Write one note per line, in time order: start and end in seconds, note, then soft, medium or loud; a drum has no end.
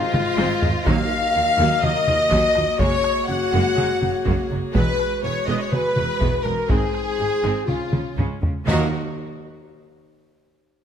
0.00 0.87 G#3 loud
0.00 0.69 F4 loud
0.00 0.70 F4 loud
0.00 0.86 F4 loud
0.00 0.87 G#4 loud
0.00 0.87 C5 loud
0.00 2.80 D#5 loud
0.12 0.23 G#1 medium
0.12 0.20 G#2 medium
0.12 0.20 C3 loud
0.12 0.20 D#3 loud
0.12 taiko mid loud
0.38 0.46 G#1 loud
0.38 0.46 G#2 loud
0.38 0.60 G#3 loud
0.38 0.60 C4 loud
0.38 taiko high loud
0.61 0.71 G#1 loud
0.61 0.71 G#2 medium
0.61 0.69 D#3 medium
0.61 0.69 G#3 loud
0.61 taiko low loud
0.85 0.95 D#2 loud
0.85 1.55 D#3 loud
0.85 1.08 F#3 loud
0.85 1.04 F#3 loud
0.85 1.08 A#3 loud
0.85 1.04 A#3 loud
0.85 4.75 A#3 loud
0.85 6.70 F#4 loud
0.85 2.80 A#4 loud
0.85 1.81 F5 loud
0.85 1.83 F5 loud
0.85 1.82 F5 loud
0.85 1.84 F5 loud
0.85 taiko loud
1.34 1.43 D#2 medium
1.34 1.42 D#3 medium
1.34 1.42 F3 medium
1.58 1.66 D#2 loud
1.58 1.67 D#2 loud
1.58 1.81 F#3 loud
1.58 1.82 A#3 loud
1.81 1.91 D#2 medium
1.81 1.91 F3 medium
1.81 1.91 F#3 medium
1.81 2.00 F#3 loud
1.81 2.00 A#3 loud
1.81 2.79 D#5 loud
1.81 2.80 D#5 loud
1.81 taiko mid medium
2.07 2.15 D#2 medium
2.07 2.16 D#2 medium
2.07 2.16 D#3 loud
2.07 2.16 F3 medium
2.07 taiko mid medium
2.31 2.39 D#2 loud
2.31 2.54 F#3 loud
2.31 2.54 A#3 loud
2.31 taiko medium
2.55 2.63 D#2 medium
2.55 2.64 D#2 medium
2.55 2.63 F3 medium
2.55 2.63 F#3 medium
2.55 taiko rim medium
2.78 2.88 F#1 loud
2.78 2.87 F#2 loud
2.78 2.96 F#3 loud
2.78 2.96 G#3 loud
2.78 3.02 G#3 loud
2.78 3.03 A#3 loud
2.78 8.43 G#4 loud
2.78 3.29 C#5 loud
2.78 3.28 C#5 loud
2.78 4.74 C#5 loud
2.78 3.28 C#5 loud
2.78 taiko loud
3.04 taiko rim medium
3.27 3.37 F#1 medium
3.27 3.36 F#2 medium
3.27 3.36 C#3 medium
3.27 3.36 F#3 medium
3.27 4.47 F#4 loud
3.27 4.47 F#5 loud
3.27 4.50 F#5 loud
3.27 4.48 F#5 loud
3.53 3.61 F#1 loud
3.53 3.61 F#2 loud
3.53 3.75 G#3 loud
3.53 3.75 A#3 loud
3.73 3.85 F#2 medium
3.73 3.92 F#3 loud
3.73 3.85 F#3 medium
3.73 3.92 G#3 loud
3.73 3.85 G#3 medium
3.78 3.86 F#1 medium
3.78 taiko mid medium
4.01 4.10 F#1 medium
4.01 4.09 F#2 medium
4.01 4.09 C#3 medium
4.01 4.09 F#3 medium
4.01 taiko mid medium
4.25 4.34 F#1 loud
4.25 4.34 F#2 loud
4.25 4.48 G#3 medium
4.25 4.48 A#3 loud
4.25 taiko medium
4.51 4.59 F#1 medium
4.51 4.59 F#2 medium
4.51 4.59 F#3 medium
4.51 4.59 G#3 medium
4.73 4.83 E1 loud
4.73 4.84 E2 loud
4.73 4.91 F#3 medium
4.73 4.91 G#3 loud
4.73 4.97 G#3 loud
4.73 8.43 G#3 loud
4.73 4.97 B3 loud
4.73 6.69 B4 loud
4.73 5.19 B4 loud
4.73 5.20 B4 loud
4.73 taiko loud
4.99 taiko rim soft
5.23 5.31 E1 medium
5.23 5.32 E2 medium
5.23 5.32 E3 medium
5.23 5.32 F#3 medium
5.23 5.47 C#5 loud
5.23 5.48 C#5 loud
5.23 5.47 C#5 loud
5.47 5.56 E1 loud
5.47 5.55 E2 loud
5.47 5.70 G#3 loud
5.47 5.70 B3 loud
5.47 5.59 D#5 loud
5.47 5.60 D#5 loud
5.59 5.71 C#5 loud
5.59 5.72 C#5 loud
5.59 5.72 C#5 medium
5.59 5.73 C#5 loud
5.72 5.80 E1 medium
5.72 5.81 E2 medium
5.72 5.80 F#3 medium
5.72 5.89 F#3 medium
5.72 5.89 G#3 medium
5.72 5.81 G#3 medium
5.72 6.43 B4 loud
5.72 6.45 B4 loud
5.72 6.43 B4 loud
5.72 6.45 B4 loud
5.72 taiko mid medium
5.96 6.05 E1 medium
5.96 6.05 E2 medium
5.96 6.04 E3 medium
5.96 6.04 F#3 medium
5.96 taiko mid medium
6.21 6.29 E1 loud
6.21 6.29 E2 loud
6.21 6.43 G#3 medium
6.21 6.43 B3 medium
6.21 taiko medium
6.43 6.53 E1 medium
6.43 6.53 E2 medium
6.43 6.53 F#3 medium
6.43 6.53 G#3 medium
6.43 6.68 A#4 loud
6.43 6.69 A#4 loud
6.43 taiko rim soft
6.68 6.77 G#1 loud
6.68 6.76 G#2 loud
6.68 6.87 D#3 medium
6.68 6.92 G#3 loud
6.68 6.92 C4 medium
6.68 6.88 C4 medium
6.68 7.68 D#4 loud
6.68 7.67 G#4 loud
6.68 7.68 G#4 loud
6.68 7.68 C5 loud
6.68 taiko loud
6.94 taiko rim soft
7.18 7.26 G#1 medium
7.18 7.27 G#2 medium
7.18 7.26 C3 medium
7.18 7.26 D#3 medium
7.42 7.51 G#1 medium
7.42 7.51 G#2 loud
7.42 7.66 G#3 medium
7.42 7.66 C4 loud
7.42 taiko rim soft
7.65 7.75 C#2 medium
7.65 7.76 C#3 medium
7.65 7.76 F3 medium
7.65 7.75 G#3 medium
7.65 8.16 F4 medium
7.65 8.17 F4 medium
7.65 8.18 F4 medium
7.65 taiko mid medium
7.69 7.86 C#3 medium
7.69 8.44 C#4 medium
7.69 7.86 C#4 medium
7.69 8.44 C#5 medium
7.92 8.00 C#2 medium
7.92 8.00 C#3 medium
7.92 8.01 C#3 medium
7.92 8.00 F3 medium
7.92 taiko mid loud
8.16 8.24 C#2 medium
8.16 8.26 C#3 medium
8.16 8.41 G#3 medium
8.16 8.41 C#4 medium
8.16 taiko low-mid medium
8.42 8.50 C#2 medium
8.42 8.50 C#3 medium
8.42 8.51 F3 medium
8.42 8.51 G#3 medium
8.42 taiko low loud
8.66 8.95 D#2 loud
8.66 8.94 D#3 loud
8.66 8.91 D#3 loud
8.66 8.94 F#3 loud
8.66 8.89 F#3 loud
8.66 8.88 A#3 loud
8.66 8.89 A#3 loud
8.66 8.89 D#4 loud
8.66 8.94 F4 loud
8.66 8.88 F#4 loud
8.66 8.95 F#4 loud
8.66 8.88 F#4 loud
8.66 8.95 A#4 loud
8.66 8.88 D#5 loud
8.66 8.88 F5 loud
8.66 taiko low loud